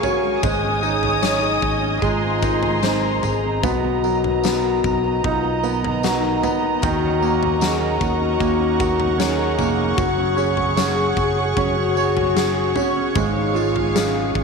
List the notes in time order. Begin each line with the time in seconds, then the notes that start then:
Already playing: A#2 G#3 A#3 G#4 A#4 C#5 F5 G#5 C#6
0.03 C#4 F#4 C#5, floor tom, tambourine
0.23 G#3
0.42 G#1 G#2 G#3 G#4 C#5 D#5 D#6, kick, floor tom, tambourine
0.63 C#4
0.83 D#4 G#4, tambourine
1.03 D#4, floor tom
1.22 C#4 D#4 C#5, snare, tambourine
1.43 G#4
1.62 G#1 D#4, kick
1.82 C#4
2.01 G#1 G#3 F4 A#5 C6, kick, tambourine
2.23 C4
2.42 D#4 A#4, kick, tambourine
2.63 D#4, floor tom
2.82 C4 D#4 C5, snare, tambourine
3.03 A#4
3.22 G#1 D#4 G#4, floor tom, tambourine
3.43 C4
3.62 B1 B2 B3 F#4 D#5, kick, floor tom, tambourine
3.84 B3
4.04 F#3 A#4, tambourine
4.24 D#4, floor tom
4.44 B3, snare, tambourine
4.64 A#4
4.84 B1 D#4, kick, tambourine
5.04 B3
5.24 B1 B2 D#4 F4, kick
5.44 B3
5.63 B3 A#4, tambourine
5.83 D#4, floor tom
6.03 B3 D#4 F#4, snare, tambourine
6.23 A#4
6.43 B3 D#4, floor tom, tambourine
6.63 B3
6.82 D#2 D#3 F#4 F#5 C#6, kick, floor tom, tambourine
7.02 C#4
7.22 A#3 A#4, tambourine
7.42 D#4, floor tom
7.61 C#4 F#4 G#4, snare, tambourine
7.81 A#4
8.00 D#2 D#4 F#4, kick, tambourine
8.20 C#4
8.40 D#2 D#3 A#3, kick, tambourine
8.59 C#4
8.79 F#4 A#4, kick, tambourine
8.99 D#4, floor tom
9.18 C#4 G#4, snare, tambourine
9.39 A#4
9.58 F1 A#3 D#4, floor tom, tambourine
9.78 C#4
9.97 F#1 F#3 F#4 G#4 C#5, kick, floor tom, tambourine
10.18 C#4
10.37 C#4 G#4, tambourine
10.57 F#4, floor tom
10.77 C#4 G#4 C#5, snare, tambourine
10.97 G#4
11.17 F#1 F#4, kick, tambourine
11.37 C#4
11.56 F#1 F#3 C#4 F#4, kick, floor tom, tambourine
11.77 C#4
11.97 G#4 C#5, tambourine
12.16 F#4, floor tom
12.36 C#4 G#4, snare, tambourine
12.56 G#4
12.76 C#4 F#4, floor tom, tambourine
12.96 C#4
13.15 G#1 G#2 G#3 D#4 G#4 F5, kick, floor tom, tambourine
13.36 C#4
13.55 F4 G#4, tambourine
13.75 F4, floor tom
13.95 G#3 C#4, snare, tambourine
14.15 G#4
14.35 G#1 F4, kick